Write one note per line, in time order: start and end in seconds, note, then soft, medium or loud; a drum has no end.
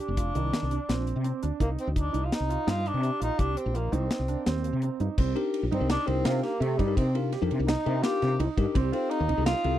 0.00 1.11 D4 medium
0.08 0.31 F1 medium
0.17 0.31 F4 medium
0.17 kick medium
0.17 closed hi-hat medium
0.35 0.50 C2 medium
0.35 0.63 D#3 medium
0.35 closed hi-hat medium
0.53 snare loud
0.53 closed hi-hat medium
0.62 0.77 C2 medium
0.71 0.85 D4 medium
0.71 closed hi-hat medium
0.89 1.12 A#1 medium
0.89 1.16 C4 medium
0.89 snare medium
0.89 closed hi-hat medium
1.07 closed hi-hat soft
1.16 1.31 C3 medium
1.24 1.38 C4 medium
1.24 closed hi-hat medium
1.43 1.50 D2 medium
1.43 1.56 D4 medium
1.43 closed hi-hat soft
1.60 1.76 C2 medium
1.60 1.69 A#3 medium
1.60 1.88 D#4 medium
1.60 kick medium
1.60 closed hi-hat medium
1.79 1.88 C4 medium
1.79 closed hi-hat medium
1.87 2.10 D2 medium
1.96 2.26 D4 medium
1.96 2.10 D#4 medium
1.96 kick medium
1.96 closed hi-hat medium
2.13 2.29 C2 medium
2.13 2.41 D#4 medium
2.13 closed hi-hat medium
2.24 2.35 F4 medium
2.32 2.71 D#4 medium
2.32 snare medium
2.32 closed hi-hat medium
2.40 2.56 C2 medium
2.49 2.63 F4 medium
2.49 closed hi-hat soft
2.67 2.90 G2 medium
2.67 2.95 D#4 medium
2.67 2.89 F4 medium
2.67 snare medium
2.67 closed hi-hat medium
2.86 3.22 D4 medium
2.86 closed hi-hat soft
2.94 3.09 C3 medium
3.03 3.17 G4 medium
3.03 closed hi-hat medium
3.20 3.29 A#1 medium
3.20 3.41 D#4 medium
3.20 3.34 F4 medium
3.20 closed hi-hat medium
3.38 3.54 C2 medium
3.38 3.59 D4 medium
3.38 3.66 G4 medium
3.38 kick medium
3.38 closed hi-hat medium
3.57 3.78 C4 medium
3.57 closed hi-hat medium
3.66 3.89 A#1 medium
3.74 3.94 A#3 medium
3.74 3.88 F4 medium
3.74 closed hi-hat medium
3.92 4.08 C2 medium
3.92 4.64 C4 medium
3.92 4.20 D#4 medium
3.92 closed hi-hat medium
4.11 snare loud
4.11 closed hi-hat medium
4.19 4.35 C2 medium
4.28 4.42 D4 medium
4.28 closed hi-hat soft
4.46 4.69 D#2 medium
4.46 4.74 C4 medium
4.46 snare medium
4.46 closed hi-hat medium
4.64 closed hi-hat soft
4.73 4.88 C3 medium
4.82 4.97 C4 medium
4.82 closed hi-hat medium
5.00 5.08 G2 medium
5.00 5.14 D#4 medium
5.00 closed hi-hat soft
5.18 5.33 C2 medium
5.18 5.32 C4 medium
5.18 kick loud
5.18 crash loud
5.35 5.64 D4 medium
5.35 5.64 D#4 medium
5.35 5.64 G4 medium
5.35 5.63 G4 medium
5.35 5.64 A#4 loud
5.35 ride medium
5.54 ride medium
5.63 5.70 A#1 medium
5.71 5.79 G2 medium
5.71 5.89 C4 medium
5.71 5.85 D#4 medium
5.71 ride medium
5.80 5.96 C2 medium
5.80 5.97 D4 medium
5.80 5.97 D#4 medium
5.80 5.97 G4 medium
5.80 5.97 A#4 medium
5.90 6.08 D4 loud
5.90 6.17 D#4 medium
5.90 snare loud
5.90 ride medium
6.06 6.23 C2 medium
6.06 6.42 C4 loud
6.06 6.51 D4 medium
6.06 6.51 D#4 medium
6.06 6.52 G4 medium
6.06 6.52 A#4 medium
6.06 ride medium
6.25 6.40 C3 medium
6.25 6.39 F4 medium
6.25 snare loud
6.25 ride medium
6.43 6.62 A#3 medium
6.43 6.57 G4 medium
6.43 snare soft
6.43 ride medium
6.60 6.76 C3 medium
6.60 6.79 A3 medium
6.60 6.75 G4 medium
6.60 ride medium
6.78 6.94 G2 medium
6.78 6.98 G3 medium
6.78 7.07 D#4 medium
6.78 kick medium
6.78 ride medium
6.87 7.04 D4 medium
6.87 7.04 D#4 medium
6.87 7.04 G4 medium
6.87 7.04 A#4 medium
6.96 7.35 C3 medium
6.96 7.14 C4 medium
6.96 kick loud
6.96 ride medium
7.15 7.31 D4 medium
7.15 7.31 D#4 medium
7.15 7.28 F4 medium
7.15 7.31 G4 medium
7.15 7.32 A#4 medium
7.15 ride medium
7.32 7.60 G4 medium
7.32 snare soft
7.32 ride medium
7.42 7.49 F2 medium
7.42 7.69 D4 medium
7.42 7.69 D#4 medium
7.42 7.69 G4 medium
7.42 7.69 A#4 medium
7.51 7.58 C3 medium
7.51 ride medium
7.59 7.74 C2 medium
7.66 8.04 D#4 medium
7.66 7.82 D#4 medium
7.66 snare loud
7.66 ride medium
7.86 8.01 C3 medium
7.86 7.97 D4 medium
7.86 7.97 D#4 medium
7.86 8.00 G4 medium
7.86 7.97 G4 medium
7.86 7.97 A#4 medium
7.86 ride medium
8.03 8.37 D4 medium
8.03 8.37 D#4 medium
8.03 8.31 F4 medium
8.03 8.39 G4 loud
8.03 8.38 G4 medium
8.03 8.38 A#4 medium
8.03 snare loud
8.03 ride medium
8.22 8.37 C3 medium
8.22 snare soft
8.22 ride medium
8.39 8.47 C2 medium
8.39 8.67 D#4 medium
8.39 ride medium
8.57 8.65 G2 medium
8.57 8.75 D4 medium
8.57 8.75 D#4 medium
8.57 8.75 G4 medium
8.57 8.76 A#4 medium
8.57 kick medium
8.57 ride medium
8.75 8.90 C2 loud
8.75 8.89 C4 medium
8.75 kick loud
8.75 ride medium
8.92 9.20 C4 medium
8.92 9.12 C4 medium
8.92 9.21 D#4 medium
8.92 9.20 F4 medium
8.92 9.21 G4 medium
8.92 9.21 A4 medium
8.92 ride medium
9.10 9.45 D#4 medium
9.10 ride medium
9.20 9.27 D#2 medium
9.29 9.36 C2 medium
9.29 9.42 D#4 medium
9.29 ride medium
9.37 9.53 C2 medium
9.37 9.54 C4 medium
9.37 9.54 D#4 medium
9.37 9.54 G4 medium
9.37 9.54 A4 medium
9.46 9.74 D#4 medium
9.46 9.79 F4 loud
9.46 snare loud
9.46 ride medium
9.64 9.79 C2 medium
9.64 9.79 C4 medium
9.64 9.79 D#4 medium
9.64 9.79 G4 medium
9.64 9.79 A4 medium
9.64 ride medium